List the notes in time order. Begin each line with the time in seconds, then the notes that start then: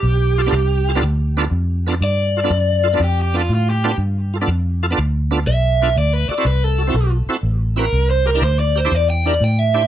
Already playing: G4
0.03 B1
0.38 F4 A4
0.46 B3 D4 F4 A4
0.53 C2
0.89 F4 A4
0.95 B3 D4 F4 A4
1.03 D2
1.37 B3 D4 F4 A4
1.51 F2
1.87 B3 D4 F4 A4
2.01 G2 D5
2.37 F4 A4
2.44 B3 D4 F4 A4
2.50 F#2
2.84 F4 A4
2.93 B3 D4 F4 A4
3.00 F2
3.04 G4
3.22 G4
3.34 B3 D4 F4 A4
3.49 A2
3.54 F4
3.70 G4
3.84 B3 D4 F4 A4
3.98 G2
4.34 F4 A4
4.41 B3 D4 F4 A4
4.48 F2
4.83 F4 A4
4.91 B3 D4 F4 A4
4.98 D2
5.31 B3 D4 F4 A4
5.47 B1 E5
5.82 B3 D4 F4 A4
5.96 D2 D5
6.13 B4
6.29 F#4 A4 D5, muted fingered electric bass stroke
6.38 C4 E4 F#4 A4
6.45 C2 B4
6.64 A4
6.78 F#4 A4
6.87 C4 E4 F#4 A4
6.94 B1
7.26 C4 E4 F#4 A4, muted fingered electric bass stroke
7.43 A1
7.76 C4 E4 F#4 A#4 B4
7.93 C2
8.10 C5
8.26 G4 A#4
8.35 D4 E4 G4 A#4
8.42 D2 C5
8.60 D5
8.76 G4 A#4 C5
8.85 D4 E4 G4 C5
8.92 E2 D5
9.10 G5
9.26 D4 E4 G4 A#4 D5
9.41 A2 G5
9.59 E5
9.74 D4 E4 G4 C5